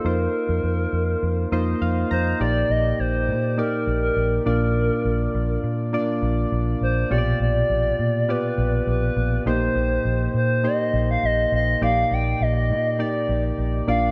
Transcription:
<<
  \new Staff \with { instrumentName = "Soft synth lead" } { \time 4/4 \key ees \lydian \tempo 4 = 102 bes'2. r8 c''8 | d''8 ees''8 c''4 bes'8. bes'8. bes'8~ | bes'4. r2 c''8 | d''8 d''4. b'4 b'4 |
c''4. c''8 ees''8. f''16 ees''8 ees''8 | f''8 g''8 ees''4 d''8. r8. f''8 | }
  \new Staff \with { instrumentName = "Synth keys" } { \time 4/4 \key ees \lydian << { r2 r8 ees''8 f''8 bes''8 | bes,4. r2 bes,8~ | bes,4 r2. | bes,4. r2 r8 |
bes,4. r2 r8 | bes,4. r2 bes,8 | } \\ { <bes ees' f' c''>4. r4 <bes ees' f' c''>4 r8 | <bes ees' g' d''>4. r8 <bes ees' g' d''>4. <bes d' f' d''>8~ | <bes d' f' d''>4 r4 <bes d' f' d''>4. r8 | <b, f' g' des'' d''>4. r8 <b f' g' d''>4. r8 |
<bes ees' g' c''>4. r8 <bes ees' g' c''>4. r8 | <bes ees' g' d''>4. r8 <bes ees' g' d''>4. <bes d' f' d''>8 | } >> }
  \new Staff \with { instrumentName = "Fingered electric bass" } { \clef bass \time 4/4 \key ees \lydian f,8 r16 f,16 f,8 f,8 f,8 f,8 f,8 f,8 | bes,,8 bes,,8 bes,,8 bes,8. r16 bes,,8 bes,,8 bes,,8~ | bes,,8 bes,,8 bes,,8 bes,8. r16 bes,,8 bes,,8 bes,,8 | bes,,8 bes,,8 bes,,8 bes,8. r16 bes,,8 bes,,8 bes,,8 |
bes,,8 bes,,8 bes,,8 bes,8. r16 bes,,8 bes,,8 bes,,8 | bes,,8 bes,,8 bes,,8 bes,8. r16 bes,,8 bes,,8 bes,,8 | }
>>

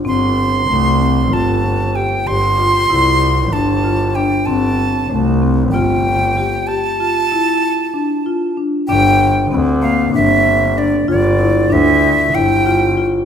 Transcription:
<<
  \new Staff \with { instrumentName = "Flute" } { \time 7/8 \key f \major \tempo 4 = 95 c'''2 a''4 g''8 | c'''2 a''4 g''8 | a''4. r8 g''4. | a''2. r8 |
g''4 r8 f''8 e''4 d''8 | d''4 e''4 g''4 r8 | }
  \new Staff \with { instrumentName = "Marimba" } { \time 7/8 \key f \major c'4 a8 c'8 f'4 g'8 | g'8 f'8 e'4 d'8 f'8 d'8 | c'4 a8 c'8 f'4 g'8 | g'8 f'8 e'4 d'8 f'8 d'8 |
d'4 c'8 bes8 d'4 d'8 | f'8 e'8 d'4 e'8 f'8 f'8 | }
  \new Staff \with { instrumentName = "Double bass" } { \clef bass \time 7/8 \key f \major g,,4 c,4 g,,4. | g,,4 c,4 g,,4. | g,,4 c,4 g,,4. | r2. r8 |
g,,4 d,4 g,,4. | g,,4 d,4 g,,4. | }
>>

